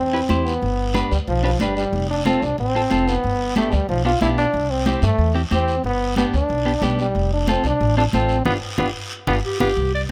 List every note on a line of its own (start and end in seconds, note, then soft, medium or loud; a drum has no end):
0.00 0.23 E2 medium
0.00 0.47 C4 medium
0.13 0.19 E4 medium
0.13 0.19 G4 soft
0.13 0.20 B4 medium
0.29 0.56 E2 medium
0.29 0.52 E4 medium
0.29 0.53 G4 medium
0.29 0.53 C5 medium
0.29 high conga medium
0.29 short guiro medium
0.46 1.10 B3 medium
0.46 short guiro medium
0.62 1.01 G1 medium
0.62 high conga soft
0.62 long guiro medium
0.94 1.12 D4 medium
0.94 1.12 G4 medium
0.94 1.12 B4 loud
0.94 high conga medium
0.94 short guiro medium
1.11 1.18 D2 medium
1.11 1.18 G3 medium
1.11 short guiro medium
1.27 1.54 B1 medium
1.27 1.43 F3 medium
1.27 high conga soft
1.27 long guiro medium
1.43 1.59 F3 medium
1.43 1.49 D4 medium
1.43 1.50 G4 medium
1.43 1.50 B4 medium
1.60 1.86 G1 medium
1.60 1.76 G3 medium
1.60 1.83 D4 medium
1.60 1.84 G4 medium
1.60 1.84 B4 medium
1.60 high conga medium
1.60 short guiro medium
1.77 2.07 G3 medium
1.77 short guiro medium
1.93 2.32 F1 medium
1.93 high conga soft
1.93 long guiro medium
2.10 2.25 D4 medium
2.26 2.43 C4 medium
2.26 2.44 C4 medium
2.26 2.43 F4 medium
2.26 2.43 A4 medium
2.26 high conga medium
2.26 short guiro medium
2.42 2.49 C2 medium
2.42 2.59 D4 medium
2.42 short guiro medium
2.58 2.84 A1 medium
2.58 3.09 C4 medium
2.58 high conga soft
2.58 long guiro medium
2.75 2.80 C4 medium
2.75 2.81 F4 medium
2.75 2.81 A4 medium
2.90 3.17 F1 medium
2.90 3.13 C4 medium
2.90 3.14 F4 medium
2.90 3.14 A4 medium
2.90 high conga medium
2.90 short guiro medium
3.07 3.56 B3 medium
3.07 short guiro medium
3.23 3.63 G1 medium
3.23 high conga soft
3.23 long guiro medium
3.56 3.74 A3 medium
3.56 3.73 B3 medium
3.56 3.73 D4 medium
3.56 3.74 G4 medium
3.56 high conga medium
3.56 short guiro medium
3.72 3.79 D2 medium
3.72 3.89 G3 medium
3.72 short guiro medium
3.89 4.15 B1 medium
3.89 4.04 F3 medium
3.89 high conga soft
3.89 long guiro medium
4.05 4.11 B3 medium
4.05 4.11 D4 medium
4.05 4.21 F4 medium
4.05 4.11 G4 medium
4.21 4.48 B1 medium
4.21 4.44 B3 medium
4.21 4.45 D4 medium
4.21 4.29 E4 loud
4.21 4.45 G4 medium
4.21 high conga medium
4.21 short guiro medium
4.38 4.72 D4 loud
4.38 short guiro medium
4.53 4.93 C2 medium
4.53 high conga soft
4.53 long guiro medium
4.70 4.87 C4 medium
4.86 5.04 C4 medium
4.86 5.03 C4 medium
4.86 5.04 E4 medium
4.86 5.04 G4 medium
4.86 high conga medium
4.86 short guiro medium
5.02 5.09 G2 medium
5.02 5.33 A3 medium
5.02 short guiro medium
5.18 5.45 E2 medium
5.18 high conga soft
5.18 long guiro medium
5.35 5.41 C4 medium
5.35 5.41 E4 medium
5.35 5.41 G4 medium
5.51 5.78 E2 medium
5.51 5.74 C4 medium
5.51 5.82 C4 loud
5.51 5.75 E4 medium
5.51 5.75 G4 medium
5.51 high conga medium
5.51 short guiro medium
5.68 short guiro medium
5.84 6.23 G1 medium
5.84 6.15 B3 medium
5.84 high conga soft
5.84 long guiro medium
6.16 6.34 B3 medium
6.16 6.25 B3 medium
6.16 6.35 D4 soft
6.16 6.35 G4 medium
6.16 high conga medium
6.16 short guiro medium
6.34 6.40 D2 medium
6.34 6.86 D4 medium
6.34 short guiro medium
6.49 6.76 B1 medium
6.49 high conga soft
6.49 long guiro medium
6.66 6.72 B3 medium
6.66 6.72 D4 soft
6.66 6.72 G4 medium
6.82 7.08 B1 medium
6.82 7.00 G3 medium
6.82 7.05 B3 medium
6.82 7.06 D4 medium
6.82 7.06 G4 medium
6.82 high conga medium
6.82 short guiro medium
6.99 7.30 G3 medium
6.99 short guiro medium
7.15 7.54 F1 medium
7.15 high conga soft
7.15 long guiro medium
7.33 7.48 D4 medium
7.47 7.65 C4 medium
7.47 7.64 C4 medium
7.47 7.65 F4 medium
7.47 7.66 A4 medium
7.47 high conga medium
7.47 short guiro medium
7.64 7.71 C2 medium
7.64 7.96 D4 loud
7.64 short guiro medium
7.81 8.07 A1 medium
7.81 high conga soft
7.81 long guiro medium
7.97 8.03 C4 medium
7.97 8.05 D4 medium
7.97 8.03 F4 medium
7.97 8.03 A4 medium
8.13 8.40 A1 medium
8.13 8.37 C4 medium
8.13 8.45 C4 medium
8.13 8.37 F4 medium
8.13 8.37 A4 medium
8.13 high conga medium
8.13 short guiro medium
8.29 short guiro medium
8.45 8.59 G1 medium
8.45 8.54 B3 medium
8.45 8.56 D4 medium
8.45 8.56 F4 medium
8.45 8.56 G4 medium
8.45 low conga medium
8.45 long guiro medium
8.78 8.91 G1 medium
8.78 8.87 B3 medium
8.78 8.89 D4 medium
8.78 8.89 F4 loud
8.78 8.89 G4 medium
8.78 low conga medium
8.78 long guiro loud
9.27 9.40 G1 medium
9.27 9.35 B3 medium
9.27 9.38 D4 medium
9.27 9.38 F4 medium
9.27 9.38 G4 medium
9.27 low conga medium
9.27 long guiro loud
9.46 9.60 G4 medium
9.60 9.73 G1 medium
9.60 9.68 B3 medium
9.60 9.71 D4 medium
9.60 9.71 F4 medium
9.60 9.71 G4 medium
9.60 9.91 G4 loud
9.60 low conga medium
9.60 long guiro loud
9.76 10.03 C2 medium
9.76 high conga soft
9.76 long guiro medium
9.95 10.02 D5 medium